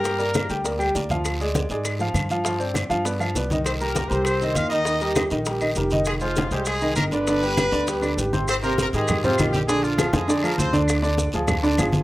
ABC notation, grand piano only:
X:1
M:4/4
L:1/8
Q:1/4=200
K:Gphr
V:1 name="Grand piano"
[G,Gg] [B,Bd]2 [G,Gg] [B,Bd] [G,Gg] [B,Bd] [F,Ff]- | [F,Ff] [A,Ad]2 [A,Ad]2 [F,Ff]2 [F,Ff] | [F,Ff] [Ccd]2 [F,Ff] [=B,=Bd] [F,Ff] [B,Bd] [E,Ee]- | [E,Ee] [G,GB]2 [G,GB]2 [E,Ee]2 [E,Ee] |
[E,Ee] [G,GB]2 [E,Ee] [G,GB] [E,Ee] [G,GB] [E,Ee]- | [E,Ee] [A,Ac]2 [A,Ac]2 [E,Ee]2 [D,Dd] | [D,Dd] [G,G=B]2 [D,Dd] [G,GB] [D,Dd] [G,GB] [C,Cc] | z [C,Cc]2 [E,EG]2 [C,Cc] [E,E]2 |
[D,Dd]2 [F,FA]2 [D,Dd] [F,FA]2 [D,Dd]- | [D,Dd] [D,Dd]2 [F,FA]2 [D,Dd] [F,FA]2 |]